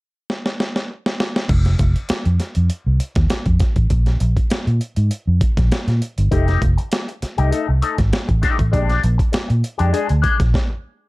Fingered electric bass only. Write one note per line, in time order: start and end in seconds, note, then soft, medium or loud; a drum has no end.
1.50 1.75 F1 loud
1.80 1.93 F1 medium
2.10 muted fingered electric bass stroke soft
2.26 2.38 F2 medium
2.57 2.68 F2 medium
2.86 2.98 C2 medium
3.16 3.28 D#2 medium
3.31 muted fingered electric bass stroke soft
3.46 3.58 F2 medium
3.77 3.89 A1 medium
3.91 4.16 A#1 medium
4.21 4.35 A#1 medium
4.51 muted fingered electric bass stroke soft
4.67 4.79 A#2 medium
4.97 5.09 G#2 medium
5.27 5.40 F2 medium
5.58 5.70 A#1 medium
5.88 6.00 A#2 medium
6.18 6.30 G1 medium
6.32 6.58 F1 loud
6.62 6.76 F1 medium
7.23 muted fingered electric bass stroke soft
7.39 7.51 C2 medium
7.69 7.81 C2 medium
7.99 8.11 G#1 medium
8.13 muted fingered electric bass stroke soft
8.29 8.41 A1 medium
8.59 8.73 A1 medium
8.73 8.99 A#1 medium
9.04 9.17 A#1 medium
9.34 muted fingered electric bass stroke soft
9.50 9.62 A#2 medium
9.80 9.92 F2 medium
10.10 10.22 D2 medium
10.40 10.52 A#1 medium